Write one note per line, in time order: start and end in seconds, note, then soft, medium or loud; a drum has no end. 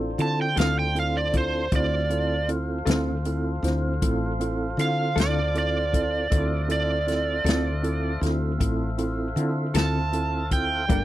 0.00 0.15 A1 medium
0.00 1.68 D4 medium
0.00 1.68 F4 medium
0.00 1.68 A4 medium
0.00 1.68 C5 medium
0.18 0.54 D3 medium
0.18 0.47 C4 medium
0.18 0.47 E4 medium
0.18 0.47 F4 medium
0.18 0.48 A4 medium
0.18 0.39 A5 medium
0.18 closed hi-hat medium
0.42 0.58 G5 medium
0.55 1.68 D2 medium
0.55 0.80 D3 soft
0.55 0.85 C4 soft
0.55 0.80 C4 medium
0.55 0.85 E4 soft
0.55 0.86 F4 medium
0.55 0.80 F4 medium
0.55 0.80 A4 medium
0.55 0.86 A4 medium
0.55 closed hi-hat medium
0.60 0.77 F5 medium
0.60 snare loud
0.79 0.96 G5 medium
0.95 1.24 C4 medium
0.95 1.24 E4 soft
0.95 1.24 F4 soft
0.95 1.24 A4 medium
0.95 closed hi-hat medium
1.00 1.16 F5 medium
1.17 1.34 D5 medium
1.32 1.62 C4 soft
1.32 1.62 E4 soft
1.32 1.62 F4 soft
1.32 1.62 A4 medium
1.32 kick medium
1.32 closed hi-hat medium
1.38 1.73 C5 medium
1.72 2.83 D2 medium
1.72 2.00 C4 medium
1.72 2.01 E4 medium
1.72 2.01 F4 soft
1.72 6.28 F4 medium
1.72 6.28 A4 medium
1.72 2.01 C5 medium
1.72 6.28 C5 medium
1.72 6.28 F5 medium
1.72 kick loud
1.72 closed hi-hat medium
1.76 2.48 D5 medium
2.10 2.39 C4 medium
2.10 2.39 E4 medium
2.10 2.39 F4 soft
2.10 2.39 A4 medium
2.10 closed hi-hat medium
2.48 2.77 C4 medium
2.48 2.77 E4 soft
2.48 2.78 F4 soft
2.48 2.78 A4 medium
2.48 closed hi-hat medium
2.86 3.59 D2 medium
2.86 3.10 D3 medium
2.86 3.15 C4 medium
2.86 3.10 C4 medium
2.86 3.16 E4 medium
2.86 3.09 F4 medium
2.86 3.16 F4 medium
2.86 3.09 A4 medium
2.86 3.16 A4 medium
2.86 closed hi-hat medium
2.90 snare loud
3.25 3.54 C4 medium
3.25 3.54 E4 medium
3.25 3.54 F4 medium
3.25 3.54 A4 medium
3.25 closed hi-hat medium
3.63 3.98 D2 loud
3.63 3.92 C4 medium
3.63 3.92 E4 medium
3.63 3.92 F4 medium
3.63 3.93 C5 medium
3.63 closed hi-hat medium
3.67 snare soft
4.02 4.74 A1 medium
4.02 4.30 C4 medium
4.02 4.30 E4 medium
4.02 4.31 F4 medium
4.02 4.31 A4 medium
4.02 kick medium
4.02 closed hi-hat medium
4.39 4.68 C4 medium
4.39 4.69 E4 medium
4.39 4.69 F4 medium
4.39 4.69 A4 medium
4.39 closed hi-hat medium
4.77 5.13 D3 medium
4.77 5.07 C4 soft
4.77 5.07 E4 medium
4.77 5.07 F4 medium
4.77 5.07 A4 medium
4.77 5.17 F5 medium
4.77 closed hi-hat medium
5.16 6.27 D2 medium
5.16 5.40 D3 medium
5.16 5.45 C4 medium
5.16 5.39 C4 medium
5.16 5.45 E4 soft
5.16 5.39 F4 medium
5.16 5.45 F4 soft
5.16 5.39 A4 medium
5.16 5.46 A4 medium
5.16 closed hi-hat medium
5.20 5.56 D5 medium
5.20 snare loud
5.55 5.83 C4 soft
5.55 5.83 E4 soft
5.55 5.84 F4 soft
5.55 5.84 A4 medium
5.55 6.68 D5 medium
5.55 closed hi-hat medium
5.92 6.21 C4 soft
5.92 6.22 E4 soft
5.92 6.22 F4 soft
5.92 6.22 A4 medium
5.92 kick medium
5.92 closed hi-hat medium
6.30 7.42 D2 medium
6.30 6.59 C4 medium
6.30 6.60 E4 medium
6.30 6.60 F4 medium
6.30 10.86 A4 medium
6.30 6.60 A4 medium
6.30 10.86 C5 medium
6.30 10.85 E5 medium
6.30 10.86 F5 medium
6.30 kick medium
6.30 closed hi-hat medium
6.68 6.97 C4 medium
6.68 6.97 E4 soft
6.68 6.98 F4 soft
6.68 6.98 A4 medium
6.68 closed hi-hat medium
6.72 8.19 D5 medium
7.06 7.36 C4 medium
7.06 7.36 E4 soft
7.06 7.36 F4 soft
7.06 7.36 A4 medium
7.06 closed hi-hat medium
7.11 snare soft
7.44 8.17 D2 medium
7.44 7.69 D3 medium
7.44 7.74 C4 medium
7.44 7.69 C4 medium
7.44 7.74 E4 soft
7.44 7.68 F4 medium
7.44 7.74 F4 soft
7.44 7.68 A4 medium
7.44 7.74 A4 medium
7.44 closed hi-hat medium
7.49 snare loud
7.83 8.12 C4 medium
7.83 8.12 E4 soft
7.83 8.12 F4 medium
7.83 8.13 A4 medium
7.83 closed hi-hat medium
8.21 8.57 D2 medium
8.21 8.50 C4 medium
8.21 8.51 E4 medium
8.21 8.51 F4 medium
8.21 8.51 A4 medium
8.21 closed hi-hat medium
8.25 snare soft
8.59 9.33 A1 medium
8.59 8.88 C4 medium
8.59 8.89 E4 medium
8.59 8.89 F4 medium
8.59 8.89 A4 medium
8.59 kick medium
8.59 closed hi-hat medium
8.98 9.27 C4 medium
8.98 9.27 E4 medium
8.98 9.27 F4 medium
8.98 9.28 A4 medium
8.98 closed hi-hat medium
9.36 9.71 D3 medium
9.36 9.65 C4 medium
9.36 9.65 E4 medium
9.36 9.65 F4 medium
9.36 9.66 A4 medium
9.36 closed hi-hat medium
9.74 10.91 D2 medium
9.74 9.98 D3 soft
9.74 10.04 C4 medium
9.74 9.98 C4 medium
9.74 10.04 E4 soft
9.74 9.98 F4 medium
9.74 10.04 F4 soft
9.74 9.97 A4 medium
9.74 10.04 A4 medium
9.74 10.50 A5 medium
9.74 snare loud
9.74 closed hi-hat medium
10.12 10.41 C4 soft
10.12 10.42 E4 soft
10.12 10.42 F4 soft
10.12 10.42 A4 medium
10.12 closed hi-hat medium
10.50 10.80 C4 soft
10.50 10.80 E4 soft
10.50 10.80 F4 soft
10.50 10.81 A4 soft
10.50 11.04 G5 medium
10.50 kick medium
10.50 closed hi-hat medium
10.87 11.04 G1 medium
10.87 11.04 G3 medium
10.87 11.04 A3 medium
10.87 11.04 A#3 medium
10.87 11.04 D4 medium
10.87 11.04 F4 medium
10.87 11.04 A4 medium
10.87 11.04 A#4 medium
10.87 kick loud
10.87 closed hi-hat medium